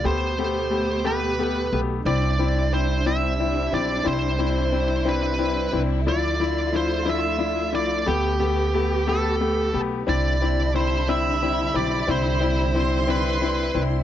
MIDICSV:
0, 0, Header, 1, 6, 480
1, 0, Start_track
1, 0, Key_signature, 0, "major"
1, 0, Tempo, 668151
1, 39, Time_signature, 6, 3, 24, 8
1, 10080, End_track
2, 0, Start_track
2, 0, Title_t, "Violin section"
2, 0, Program_c, 0, 48
2, 7246, Note_on_c, 0, 83, 88
2, 9134, Note_off_c, 0, 83, 0
2, 9168, Note_on_c, 0, 84, 113
2, 10080, Note_off_c, 0, 84, 0
2, 10080, End_track
3, 0, Start_track
3, 0, Title_t, "Lead electric guitar"
3, 0, Program_c, 1, 29
3, 44, Note_on_c, 1, 72, 100
3, 764, Note_off_c, 1, 72, 0
3, 766, Note_on_c, 1, 71, 90
3, 1274, Note_off_c, 1, 71, 0
3, 1484, Note_on_c, 1, 74, 102
3, 1965, Note_off_c, 1, 74, 0
3, 1968, Note_on_c, 1, 72, 89
3, 2187, Note_off_c, 1, 72, 0
3, 2204, Note_on_c, 1, 76, 98
3, 2685, Note_on_c, 1, 74, 89
3, 2695, Note_off_c, 1, 76, 0
3, 2926, Note_off_c, 1, 74, 0
3, 2929, Note_on_c, 1, 72, 99
3, 3652, Note_off_c, 1, 72, 0
3, 3655, Note_on_c, 1, 71, 84
3, 4158, Note_off_c, 1, 71, 0
3, 4372, Note_on_c, 1, 74, 102
3, 4855, Note_off_c, 1, 74, 0
3, 4858, Note_on_c, 1, 72, 88
3, 5095, Note_off_c, 1, 72, 0
3, 5095, Note_on_c, 1, 76, 94
3, 5538, Note_off_c, 1, 76, 0
3, 5569, Note_on_c, 1, 74, 97
3, 5787, Note_off_c, 1, 74, 0
3, 5805, Note_on_c, 1, 67, 92
3, 6526, Note_off_c, 1, 67, 0
3, 6529, Note_on_c, 1, 69, 84
3, 7035, Note_off_c, 1, 69, 0
3, 7252, Note_on_c, 1, 74, 88
3, 7697, Note_off_c, 1, 74, 0
3, 7728, Note_on_c, 1, 72, 84
3, 7967, Note_on_c, 1, 76, 93
3, 7971, Note_off_c, 1, 72, 0
3, 8450, Note_on_c, 1, 74, 80
3, 8457, Note_off_c, 1, 76, 0
3, 8691, Note_off_c, 1, 74, 0
3, 8700, Note_on_c, 1, 72, 91
3, 9410, Note_off_c, 1, 72, 0
3, 9413, Note_on_c, 1, 71, 88
3, 9917, Note_off_c, 1, 71, 0
3, 10080, End_track
4, 0, Start_track
4, 0, Title_t, "Upright piano"
4, 0, Program_c, 2, 0
4, 30, Note_on_c, 2, 57, 78
4, 33, Note_on_c, 2, 59, 74
4, 34, Note_on_c, 2, 67, 90
4, 221, Note_off_c, 2, 57, 0
4, 223, Note_off_c, 2, 59, 0
4, 223, Note_off_c, 2, 67, 0
4, 275, Note_on_c, 2, 57, 70
4, 279, Note_on_c, 2, 59, 69
4, 280, Note_on_c, 2, 67, 80
4, 464, Note_off_c, 2, 57, 0
4, 466, Note_off_c, 2, 59, 0
4, 466, Note_off_c, 2, 67, 0
4, 506, Note_on_c, 2, 57, 61
4, 510, Note_on_c, 2, 59, 61
4, 513, Note_on_c, 2, 67, 68
4, 699, Note_off_c, 2, 57, 0
4, 701, Note_off_c, 2, 59, 0
4, 703, Note_off_c, 2, 67, 0
4, 750, Note_on_c, 2, 57, 81
4, 753, Note_on_c, 2, 59, 65
4, 755, Note_on_c, 2, 67, 89
4, 941, Note_off_c, 2, 57, 0
4, 943, Note_off_c, 2, 59, 0
4, 944, Note_off_c, 2, 67, 0
4, 997, Note_on_c, 2, 57, 71
4, 998, Note_on_c, 2, 59, 64
4, 1002, Note_on_c, 2, 67, 76
4, 1185, Note_off_c, 2, 57, 0
4, 1185, Note_off_c, 2, 59, 0
4, 1187, Note_off_c, 2, 67, 0
4, 1238, Note_on_c, 2, 57, 64
4, 1242, Note_on_c, 2, 59, 65
4, 1243, Note_on_c, 2, 67, 68
4, 1425, Note_off_c, 2, 57, 0
4, 1427, Note_off_c, 2, 59, 0
4, 1428, Note_off_c, 2, 67, 0
4, 1480, Note_on_c, 2, 60, 79
4, 1480, Note_on_c, 2, 62, 76
4, 1482, Note_on_c, 2, 64, 86
4, 1666, Note_off_c, 2, 60, 0
4, 1666, Note_off_c, 2, 62, 0
4, 1667, Note_off_c, 2, 64, 0
4, 1718, Note_on_c, 2, 60, 73
4, 1722, Note_on_c, 2, 64, 79
4, 1724, Note_on_c, 2, 62, 75
4, 1905, Note_off_c, 2, 60, 0
4, 1907, Note_off_c, 2, 64, 0
4, 1908, Note_off_c, 2, 62, 0
4, 1959, Note_on_c, 2, 60, 69
4, 1962, Note_on_c, 2, 62, 59
4, 1963, Note_on_c, 2, 64, 72
4, 2146, Note_off_c, 2, 60, 0
4, 2147, Note_off_c, 2, 62, 0
4, 2148, Note_off_c, 2, 64, 0
4, 2197, Note_on_c, 2, 60, 79
4, 2198, Note_on_c, 2, 62, 66
4, 2200, Note_on_c, 2, 64, 90
4, 2385, Note_off_c, 2, 60, 0
4, 2385, Note_off_c, 2, 62, 0
4, 2386, Note_off_c, 2, 64, 0
4, 2438, Note_on_c, 2, 60, 65
4, 2441, Note_on_c, 2, 62, 70
4, 2446, Note_on_c, 2, 64, 73
4, 2625, Note_off_c, 2, 60, 0
4, 2627, Note_off_c, 2, 62, 0
4, 2629, Note_off_c, 2, 64, 0
4, 2675, Note_on_c, 2, 60, 63
4, 2678, Note_on_c, 2, 62, 60
4, 2684, Note_on_c, 2, 64, 77
4, 2864, Note_off_c, 2, 60, 0
4, 2865, Note_off_c, 2, 62, 0
4, 2868, Note_off_c, 2, 64, 0
4, 2902, Note_on_c, 2, 60, 80
4, 2907, Note_on_c, 2, 62, 79
4, 2909, Note_on_c, 2, 64, 88
4, 3097, Note_off_c, 2, 60, 0
4, 3100, Note_off_c, 2, 62, 0
4, 3101, Note_off_c, 2, 64, 0
4, 3150, Note_on_c, 2, 60, 74
4, 3156, Note_on_c, 2, 62, 67
4, 3158, Note_on_c, 2, 64, 85
4, 3341, Note_off_c, 2, 60, 0
4, 3344, Note_off_c, 2, 62, 0
4, 3345, Note_off_c, 2, 64, 0
4, 3391, Note_on_c, 2, 60, 63
4, 3393, Note_on_c, 2, 62, 61
4, 3395, Note_on_c, 2, 64, 71
4, 3582, Note_off_c, 2, 60, 0
4, 3583, Note_off_c, 2, 62, 0
4, 3584, Note_off_c, 2, 64, 0
4, 3630, Note_on_c, 2, 60, 85
4, 3630, Note_on_c, 2, 62, 71
4, 3634, Note_on_c, 2, 64, 84
4, 3821, Note_off_c, 2, 60, 0
4, 3821, Note_off_c, 2, 62, 0
4, 3823, Note_off_c, 2, 64, 0
4, 3869, Note_on_c, 2, 60, 74
4, 3870, Note_on_c, 2, 62, 69
4, 3872, Note_on_c, 2, 64, 80
4, 4061, Note_off_c, 2, 60, 0
4, 4061, Note_off_c, 2, 62, 0
4, 4062, Note_off_c, 2, 64, 0
4, 4111, Note_on_c, 2, 60, 71
4, 4114, Note_on_c, 2, 62, 70
4, 4119, Note_on_c, 2, 64, 77
4, 4302, Note_off_c, 2, 60, 0
4, 4304, Note_off_c, 2, 62, 0
4, 4306, Note_off_c, 2, 64, 0
4, 4357, Note_on_c, 2, 62, 74
4, 4358, Note_on_c, 2, 53, 85
4, 4362, Note_on_c, 2, 64, 89
4, 4545, Note_off_c, 2, 62, 0
4, 4546, Note_off_c, 2, 53, 0
4, 4547, Note_off_c, 2, 64, 0
4, 4596, Note_on_c, 2, 53, 72
4, 4601, Note_on_c, 2, 62, 77
4, 4605, Note_on_c, 2, 64, 90
4, 4784, Note_off_c, 2, 53, 0
4, 4787, Note_off_c, 2, 62, 0
4, 4789, Note_off_c, 2, 64, 0
4, 4831, Note_on_c, 2, 53, 72
4, 4837, Note_on_c, 2, 62, 69
4, 4837, Note_on_c, 2, 64, 85
4, 5022, Note_off_c, 2, 53, 0
4, 5025, Note_off_c, 2, 62, 0
4, 5025, Note_off_c, 2, 64, 0
4, 5068, Note_on_c, 2, 53, 86
4, 5068, Note_on_c, 2, 64, 84
4, 5070, Note_on_c, 2, 62, 75
4, 5261, Note_off_c, 2, 53, 0
4, 5261, Note_off_c, 2, 64, 0
4, 5262, Note_off_c, 2, 62, 0
4, 5305, Note_on_c, 2, 53, 68
4, 5307, Note_on_c, 2, 62, 69
4, 5310, Note_on_c, 2, 64, 83
4, 5499, Note_off_c, 2, 53, 0
4, 5500, Note_off_c, 2, 62, 0
4, 5501, Note_off_c, 2, 64, 0
4, 5550, Note_on_c, 2, 53, 70
4, 5550, Note_on_c, 2, 62, 64
4, 5553, Note_on_c, 2, 64, 79
4, 5742, Note_off_c, 2, 53, 0
4, 5742, Note_off_c, 2, 62, 0
4, 5743, Note_off_c, 2, 64, 0
4, 5792, Note_on_c, 2, 59, 76
4, 5793, Note_on_c, 2, 57, 87
4, 5794, Note_on_c, 2, 67, 84
4, 5983, Note_off_c, 2, 57, 0
4, 5983, Note_off_c, 2, 59, 0
4, 5983, Note_off_c, 2, 67, 0
4, 6032, Note_on_c, 2, 57, 72
4, 6033, Note_on_c, 2, 59, 69
4, 6035, Note_on_c, 2, 67, 89
4, 6223, Note_off_c, 2, 57, 0
4, 6223, Note_off_c, 2, 59, 0
4, 6224, Note_off_c, 2, 67, 0
4, 6279, Note_on_c, 2, 57, 73
4, 6284, Note_on_c, 2, 59, 62
4, 6285, Note_on_c, 2, 67, 74
4, 6466, Note_off_c, 2, 57, 0
4, 6469, Note_off_c, 2, 59, 0
4, 6469, Note_off_c, 2, 67, 0
4, 6515, Note_on_c, 2, 57, 82
4, 6520, Note_on_c, 2, 59, 78
4, 6522, Note_on_c, 2, 67, 91
4, 6704, Note_off_c, 2, 57, 0
4, 6707, Note_off_c, 2, 59, 0
4, 6708, Note_off_c, 2, 67, 0
4, 6757, Note_on_c, 2, 57, 70
4, 6761, Note_on_c, 2, 59, 66
4, 6761, Note_on_c, 2, 67, 80
4, 6945, Note_off_c, 2, 57, 0
4, 6947, Note_off_c, 2, 59, 0
4, 6947, Note_off_c, 2, 67, 0
4, 6993, Note_on_c, 2, 57, 66
4, 6997, Note_on_c, 2, 59, 65
4, 7000, Note_on_c, 2, 67, 76
4, 7183, Note_off_c, 2, 57, 0
4, 7185, Note_off_c, 2, 59, 0
4, 7187, Note_off_c, 2, 67, 0
4, 7232, Note_on_c, 2, 60, 80
4, 7233, Note_on_c, 2, 62, 75
4, 7240, Note_on_c, 2, 64, 96
4, 7423, Note_off_c, 2, 60, 0
4, 7423, Note_off_c, 2, 62, 0
4, 7427, Note_off_c, 2, 64, 0
4, 7479, Note_on_c, 2, 62, 73
4, 7483, Note_on_c, 2, 60, 70
4, 7487, Note_on_c, 2, 64, 85
4, 7666, Note_off_c, 2, 62, 0
4, 7668, Note_off_c, 2, 60, 0
4, 7670, Note_off_c, 2, 64, 0
4, 7720, Note_on_c, 2, 60, 62
4, 7720, Note_on_c, 2, 64, 72
4, 7722, Note_on_c, 2, 62, 61
4, 7907, Note_off_c, 2, 60, 0
4, 7907, Note_off_c, 2, 64, 0
4, 7908, Note_off_c, 2, 62, 0
4, 7963, Note_on_c, 2, 60, 86
4, 7963, Note_on_c, 2, 62, 74
4, 7966, Note_on_c, 2, 64, 88
4, 8148, Note_off_c, 2, 60, 0
4, 8148, Note_off_c, 2, 62, 0
4, 8150, Note_off_c, 2, 64, 0
4, 8206, Note_on_c, 2, 60, 71
4, 8206, Note_on_c, 2, 62, 61
4, 8209, Note_on_c, 2, 64, 75
4, 8390, Note_off_c, 2, 60, 0
4, 8390, Note_off_c, 2, 62, 0
4, 8391, Note_off_c, 2, 64, 0
4, 8435, Note_on_c, 2, 60, 69
4, 8438, Note_on_c, 2, 62, 64
4, 8442, Note_on_c, 2, 64, 81
4, 8624, Note_off_c, 2, 60, 0
4, 8626, Note_off_c, 2, 62, 0
4, 8628, Note_off_c, 2, 64, 0
4, 8674, Note_on_c, 2, 60, 77
4, 8677, Note_on_c, 2, 62, 77
4, 8681, Note_on_c, 2, 64, 94
4, 8864, Note_off_c, 2, 60, 0
4, 8865, Note_off_c, 2, 62, 0
4, 8867, Note_off_c, 2, 64, 0
4, 8913, Note_on_c, 2, 60, 71
4, 8915, Note_on_c, 2, 62, 73
4, 8921, Note_on_c, 2, 64, 86
4, 9103, Note_off_c, 2, 60, 0
4, 9104, Note_off_c, 2, 62, 0
4, 9107, Note_off_c, 2, 64, 0
4, 9155, Note_on_c, 2, 60, 69
4, 9159, Note_on_c, 2, 62, 63
4, 9163, Note_on_c, 2, 64, 75
4, 9344, Note_off_c, 2, 60, 0
4, 9346, Note_off_c, 2, 62, 0
4, 9348, Note_off_c, 2, 64, 0
4, 9392, Note_on_c, 2, 60, 81
4, 9396, Note_on_c, 2, 62, 76
4, 9397, Note_on_c, 2, 64, 89
4, 9582, Note_off_c, 2, 60, 0
4, 9584, Note_off_c, 2, 62, 0
4, 9585, Note_off_c, 2, 64, 0
4, 9636, Note_on_c, 2, 60, 72
4, 9640, Note_on_c, 2, 62, 68
4, 9643, Note_on_c, 2, 64, 76
4, 9824, Note_off_c, 2, 60, 0
4, 9826, Note_off_c, 2, 62, 0
4, 9828, Note_off_c, 2, 64, 0
4, 9875, Note_on_c, 2, 60, 69
4, 9877, Note_on_c, 2, 62, 67
4, 9877, Note_on_c, 2, 64, 81
4, 10064, Note_off_c, 2, 60, 0
4, 10065, Note_off_c, 2, 62, 0
4, 10065, Note_off_c, 2, 64, 0
4, 10080, End_track
5, 0, Start_track
5, 0, Title_t, "String section"
5, 0, Program_c, 3, 48
5, 30, Note_on_c, 3, 67, 86
5, 34, Note_on_c, 3, 57, 72
5, 35, Note_on_c, 3, 47, 67
5, 1459, Note_off_c, 3, 67, 0
5, 1461, Note_off_c, 3, 57, 0
5, 1462, Note_off_c, 3, 47, 0
5, 1482, Note_on_c, 3, 62, 73
5, 1486, Note_on_c, 3, 60, 72
5, 1488, Note_on_c, 3, 55, 71
5, 1488, Note_on_c, 3, 64, 74
5, 4332, Note_off_c, 3, 62, 0
5, 4334, Note_off_c, 3, 60, 0
5, 4335, Note_off_c, 3, 55, 0
5, 4365, Note_on_c, 3, 50, 70
5, 4369, Note_on_c, 3, 65, 84
5, 4371, Note_on_c, 3, 57, 71
5, 5775, Note_off_c, 3, 64, 0
5, 5788, Note_off_c, 3, 50, 0
5, 5790, Note_off_c, 3, 65, 0
5, 5807, Note_on_c, 3, 67, 86
5, 5810, Note_on_c, 3, 59, 68
5, 7216, Note_off_c, 3, 57, 0
5, 7229, Note_off_c, 3, 67, 0
5, 7231, Note_off_c, 3, 59, 0
5, 7248, Note_on_c, 3, 62, 62
5, 7250, Note_on_c, 3, 64, 80
5, 7253, Note_on_c, 3, 55, 68
5, 7254, Note_on_c, 3, 50, 70
5, 8669, Note_off_c, 3, 62, 0
5, 8676, Note_on_c, 3, 60, 73
5, 10080, Note_off_c, 3, 50, 0
5, 10080, Note_off_c, 3, 55, 0
5, 10080, Note_off_c, 3, 60, 0
5, 10080, Note_off_c, 3, 64, 0
5, 10080, End_track
6, 0, Start_track
6, 0, Title_t, "Upright bass"
6, 0, Program_c, 4, 32
6, 33, Note_on_c, 4, 38, 96
6, 1207, Note_off_c, 4, 38, 0
6, 1236, Note_on_c, 4, 35, 88
6, 1463, Note_off_c, 4, 35, 0
6, 1475, Note_on_c, 4, 36, 108
6, 2648, Note_off_c, 4, 36, 0
6, 2679, Note_on_c, 4, 35, 84
6, 2904, Note_off_c, 4, 35, 0
6, 2918, Note_on_c, 4, 36, 93
6, 4089, Note_off_c, 4, 36, 0
6, 4117, Note_on_c, 4, 36, 90
6, 4362, Note_off_c, 4, 36, 0
6, 4362, Note_on_c, 4, 38, 104
6, 5561, Note_off_c, 4, 38, 0
6, 5561, Note_on_c, 4, 36, 81
6, 5785, Note_off_c, 4, 36, 0
6, 5803, Note_on_c, 4, 38, 102
6, 6972, Note_off_c, 4, 38, 0
6, 6999, Note_on_c, 4, 35, 75
6, 7224, Note_off_c, 4, 35, 0
6, 7242, Note_on_c, 4, 36, 93
6, 8412, Note_off_c, 4, 36, 0
6, 8439, Note_on_c, 4, 35, 87
6, 8665, Note_off_c, 4, 35, 0
6, 8680, Note_on_c, 4, 36, 101
6, 9850, Note_off_c, 4, 36, 0
6, 9877, Note_on_c, 4, 36, 92
6, 10080, Note_off_c, 4, 36, 0
6, 10080, End_track
0, 0, End_of_file